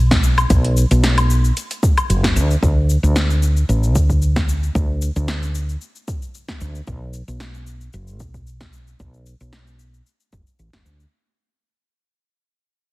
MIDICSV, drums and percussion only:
0, 0, Header, 1, 2, 480
1, 0, Start_track
1, 0, Tempo, 530973
1, 453, Time_signature, 4, 2, 24, 8
1, 11680, End_track
2, 0, Start_track
2, 0, Title_t, "Drums"
2, 101, Note_on_c, 9, 36, 106
2, 102, Note_on_c, 9, 38, 70
2, 102, Note_on_c, 9, 42, 37
2, 103, Note_on_c, 9, 69, 31
2, 191, Note_off_c, 9, 36, 0
2, 193, Note_off_c, 9, 38, 0
2, 193, Note_off_c, 9, 42, 0
2, 194, Note_off_c, 9, 69, 0
2, 213, Note_on_c, 9, 69, 80
2, 303, Note_off_c, 9, 69, 0
2, 342, Note_on_c, 9, 77, 69
2, 343, Note_on_c, 9, 69, 31
2, 432, Note_off_c, 9, 77, 0
2, 433, Note_off_c, 9, 69, 0
2, 453, Note_on_c, 9, 36, 123
2, 454, Note_on_c, 9, 42, 63
2, 455, Note_on_c, 9, 69, 43
2, 544, Note_off_c, 9, 36, 0
2, 544, Note_off_c, 9, 42, 0
2, 545, Note_off_c, 9, 69, 0
2, 583, Note_on_c, 9, 42, 41
2, 674, Note_off_c, 9, 42, 0
2, 696, Note_on_c, 9, 69, 74
2, 786, Note_off_c, 9, 69, 0
2, 823, Note_on_c, 9, 42, 28
2, 824, Note_on_c, 9, 69, 31
2, 913, Note_off_c, 9, 42, 0
2, 914, Note_off_c, 9, 69, 0
2, 937, Note_on_c, 9, 38, 69
2, 937, Note_on_c, 9, 42, 59
2, 938, Note_on_c, 9, 69, 45
2, 1027, Note_off_c, 9, 38, 0
2, 1027, Note_off_c, 9, 42, 0
2, 1028, Note_off_c, 9, 69, 0
2, 1064, Note_on_c, 9, 42, 37
2, 1064, Note_on_c, 9, 77, 62
2, 1066, Note_on_c, 9, 69, 28
2, 1155, Note_off_c, 9, 42, 0
2, 1155, Note_off_c, 9, 77, 0
2, 1156, Note_off_c, 9, 69, 0
2, 1179, Note_on_c, 9, 69, 74
2, 1270, Note_off_c, 9, 69, 0
2, 1306, Note_on_c, 9, 69, 30
2, 1397, Note_off_c, 9, 69, 0
2, 1418, Note_on_c, 9, 42, 55
2, 1419, Note_on_c, 9, 69, 40
2, 1508, Note_off_c, 9, 42, 0
2, 1510, Note_off_c, 9, 69, 0
2, 1545, Note_on_c, 9, 42, 38
2, 1546, Note_on_c, 9, 69, 30
2, 1635, Note_off_c, 9, 42, 0
2, 1636, Note_off_c, 9, 69, 0
2, 1654, Note_on_c, 9, 36, 95
2, 1657, Note_on_c, 9, 69, 77
2, 1744, Note_off_c, 9, 36, 0
2, 1748, Note_off_c, 9, 69, 0
2, 1785, Note_on_c, 9, 42, 26
2, 1785, Note_on_c, 9, 77, 73
2, 1787, Note_on_c, 9, 69, 34
2, 1876, Note_off_c, 9, 42, 0
2, 1876, Note_off_c, 9, 77, 0
2, 1877, Note_off_c, 9, 69, 0
2, 1899, Note_on_c, 9, 42, 63
2, 1900, Note_on_c, 9, 69, 44
2, 1989, Note_off_c, 9, 42, 0
2, 1991, Note_off_c, 9, 69, 0
2, 2021, Note_on_c, 9, 36, 55
2, 2027, Note_on_c, 9, 38, 72
2, 2027, Note_on_c, 9, 42, 39
2, 2028, Note_on_c, 9, 69, 30
2, 2111, Note_off_c, 9, 36, 0
2, 2117, Note_off_c, 9, 38, 0
2, 2117, Note_off_c, 9, 42, 0
2, 2119, Note_off_c, 9, 69, 0
2, 2139, Note_on_c, 9, 69, 83
2, 2230, Note_off_c, 9, 69, 0
2, 2265, Note_on_c, 9, 69, 31
2, 2356, Note_off_c, 9, 69, 0
2, 2373, Note_on_c, 9, 36, 108
2, 2380, Note_on_c, 9, 69, 40
2, 2464, Note_off_c, 9, 36, 0
2, 2470, Note_off_c, 9, 69, 0
2, 2619, Note_on_c, 9, 69, 71
2, 2709, Note_off_c, 9, 69, 0
2, 2749, Note_on_c, 9, 69, 31
2, 2839, Note_off_c, 9, 69, 0
2, 2855, Note_on_c, 9, 38, 71
2, 2857, Note_on_c, 9, 69, 40
2, 2946, Note_off_c, 9, 38, 0
2, 2947, Note_off_c, 9, 69, 0
2, 2986, Note_on_c, 9, 69, 25
2, 3077, Note_off_c, 9, 69, 0
2, 3098, Note_on_c, 9, 69, 62
2, 3188, Note_off_c, 9, 69, 0
2, 3225, Note_on_c, 9, 69, 27
2, 3315, Note_off_c, 9, 69, 0
2, 3338, Note_on_c, 9, 69, 35
2, 3429, Note_off_c, 9, 69, 0
2, 3466, Note_on_c, 9, 69, 30
2, 3557, Note_off_c, 9, 69, 0
2, 3575, Note_on_c, 9, 36, 96
2, 3576, Note_on_c, 9, 69, 74
2, 3665, Note_off_c, 9, 36, 0
2, 3666, Note_off_c, 9, 69, 0
2, 3702, Note_on_c, 9, 36, 52
2, 3705, Note_on_c, 9, 69, 30
2, 3793, Note_off_c, 9, 36, 0
2, 3795, Note_off_c, 9, 69, 0
2, 3815, Note_on_c, 9, 69, 40
2, 3906, Note_off_c, 9, 69, 0
2, 3943, Note_on_c, 9, 36, 93
2, 3945, Note_on_c, 9, 38, 63
2, 3946, Note_on_c, 9, 69, 28
2, 4033, Note_off_c, 9, 36, 0
2, 4035, Note_off_c, 9, 38, 0
2, 4036, Note_off_c, 9, 69, 0
2, 4057, Note_on_c, 9, 69, 73
2, 4148, Note_off_c, 9, 69, 0
2, 4187, Note_on_c, 9, 69, 27
2, 4277, Note_off_c, 9, 69, 0
2, 4295, Note_on_c, 9, 36, 105
2, 4298, Note_on_c, 9, 69, 40
2, 4386, Note_off_c, 9, 36, 0
2, 4389, Note_off_c, 9, 69, 0
2, 4537, Note_on_c, 9, 69, 66
2, 4627, Note_off_c, 9, 69, 0
2, 4665, Note_on_c, 9, 69, 28
2, 4755, Note_off_c, 9, 69, 0
2, 4775, Note_on_c, 9, 38, 63
2, 4776, Note_on_c, 9, 69, 41
2, 4865, Note_off_c, 9, 38, 0
2, 4867, Note_off_c, 9, 69, 0
2, 4906, Note_on_c, 9, 69, 26
2, 4996, Note_off_c, 9, 69, 0
2, 5018, Note_on_c, 9, 69, 66
2, 5108, Note_off_c, 9, 69, 0
2, 5145, Note_on_c, 9, 69, 26
2, 5236, Note_off_c, 9, 69, 0
2, 5256, Note_on_c, 9, 69, 38
2, 5346, Note_off_c, 9, 69, 0
2, 5384, Note_on_c, 9, 69, 26
2, 5474, Note_off_c, 9, 69, 0
2, 5495, Note_on_c, 9, 36, 91
2, 5496, Note_on_c, 9, 69, 65
2, 5586, Note_off_c, 9, 36, 0
2, 5587, Note_off_c, 9, 69, 0
2, 5625, Note_on_c, 9, 69, 31
2, 5715, Note_off_c, 9, 69, 0
2, 5736, Note_on_c, 9, 69, 41
2, 5827, Note_off_c, 9, 69, 0
2, 5862, Note_on_c, 9, 36, 50
2, 5863, Note_on_c, 9, 38, 63
2, 5864, Note_on_c, 9, 69, 27
2, 5952, Note_off_c, 9, 36, 0
2, 5953, Note_off_c, 9, 38, 0
2, 5954, Note_off_c, 9, 69, 0
2, 5974, Note_on_c, 9, 69, 73
2, 6064, Note_off_c, 9, 69, 0
2, 6104, Note_on_c, 9, 69, 29
2, 6194, Note_off_c, 9, 69, 0
2, 6213, Note_on_c, 9, 69, 36
2, 6214, Note_on_c, 9, 36, 101
2, 6303, Note_off_c, 9, 69, 0
2, 6305, Note_off_c, 9, 36, 0
2, 6451, Note_on_c, 9, 69, 65
2, 6541, Note_off_c, 9, 69, 0
2, 6583, Note_on_c, 9, 69, 29
2, 6674, Note_off_c, 9, 69, 0
2, 6692, Note_on_c, 9, 38, 67
2, 6693, Note_on_c, 9, 69, 38
2, 6782, Note_off_c, 9, 38, 0
2, 6783, Note_off_c, 9, 69, 0
2, 6818, Note_on_c, 9, 69, 25
2, 6909, Note_off_c, 9, 69, 0
2, 6933, Note_on_c, 9, 69, 64
2, 7023, Note_off_c, 9, 69, 0
2, 7061, Note_on_c, 9, 69, 27
2, 7151, Note_off_c, 9, 69, 0
2, 7170, Note_on_c, 9, 69, 32
2, 7260, Note_off_c, 9, 69, 0
2, 7299, Note_on_c, 9, 69, 26
2, 7389, Note_off_c, 9, 69, 0
2, 7412, Note_on_c, 9, 69, 66
2, 7414, Note_on_c, 9, 36, 84
2, 7503, Note_off_c, 9, 69, 0
2, 7505, Note_off_c, 9, 36, 0
2, 7541, Note_on_c, 9, 69, 28
2, 7542, Note_on_c, 9, 36, 51
2, 7631, Note_off_c, 9, 69, 0
2, 7632, Note_off_c, 9, 36, 0
2, 7656, Note_on_c, 9, 69, 38
2, 7746, Note_off_c, 9, 69, 0
2, 7780, Note_on_c, 9, 38, 64
2, 7781, Note_on_c, 9, 69, 27
2, 7782, Note_on_c, 9, 36, 88
2, 7871, Note_off_c, 9, 38, 0
2, 7872, Note_off_c, 9, 36, 0
2, 7872, Note_off_c, 9, 69, 0
2, 7893, Note_on_c, 9, 69, 72
2, 7984, Note_off_c, 9, 69, 0
2, 8022, Note_on_c, 9, 69, 27
2, 8113, Note_off_c, 9, 69, 0
2, 8134, Note_on_c, 9, 69, 37
2, 8135, Note_on_c, 9, 36, 98
2, 8224, Note_off_c, 9, 69, 0
2, 8226, Note_off_c, 9, 36, 0
2, 8261, Note_on_c, 9, 69, 26
2, 8352, Note_off_c, 9, 69, 0
2, 8374, Note_on_c, 9, 69, 66
2, 8465, Note_off_c, 9, 69, 0
2, 8501, Note_on_c, 9, 69, 30
2, 8592, Note_off_c, 9, 69, 0
2, 8612, Note_on_c, 9, 38, 71
2, 8614, Note_on_c, 9, 69, 37
2, 8703, Note_off_c, 9, 38, 0
2, 8704, Note_off_c, 9, 69, 0
2, 8743, Note_on_c, 9, 69, 25
2, 8834, Note_off_c, 9, 69, 0
2, 8854, Note_on_c, 9, 69, 62
2, 8945, Note_off_c, 9, 69, 0
2, 8985, Note_on_c, 9, 69, 27
2, 9076, Note_off_c, 9, 69, 0
2, 9098, Note_on_c, 9, 69, 32
2, 9189, Note_off_c, 9, 69, 0
2, 9223, Note_on_c, 9, 69, 27
2, 9314, Note_off_c, 9, 69, 0
2, 9335, Note_on_c, 9, 36, 90
2, 9335, Note_on_c, 9, 69, 65
2, 9426, Note_off_c, 9, 36, 0
2, 9426, Note_off_c, 9, 69, 0
2, 9463, Note_on_c, 9, 69, 30
2, 9553, Note_off_c, 9, 69, 0
2, 9576, Note_on_c, 9, 69, 37
2, 9666, Note_off_c, 9, 69, 0
2, 9703, Note_on_c, 9, 36, 49
2, 9703, Note_on_c, 9, 38, 65
2, 9705, Note_on_c, 9, 69, 23
2, 9793, Note_off_c, 9, 36, 0
2, 9794, Note_off_c, 9, 38, 0
2, 9795, Note_off_c, 9, 69, 0
2, 9816, Note_on_c, 9, 69, 70
2, 9907, Note_off_c, 9, 69, 0
2, 9944, Note_on_c, 9, 69, 28
2, 10035, Note_off_c, 9, 69, 0
2, 11680, End_track
0, 0, End_of_file